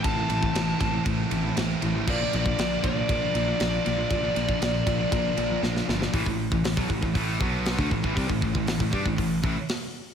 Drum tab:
CC |----------------|x---------------|----------------|----------------|
RD |x-x-x-x-x-x-x-x-|--x-x-x-x-x-x-x-|x-x-x-x-x-x-----|----------------|
HH |----------------|----------------|----------------|o---o---o---o---|
SD |----o-------o---|----o-------o---|----o-------oooo|----o-------o---|
BD |o--o--o-o-------|o--o--o-o-------|o--o--o-o-------|oo-o-oooo-o--ooo|

CC |----------------|
RD |----------------|
HH |o---o---o---o---|
SD |----o-------o---|
BD |oooo-oooo-o-----|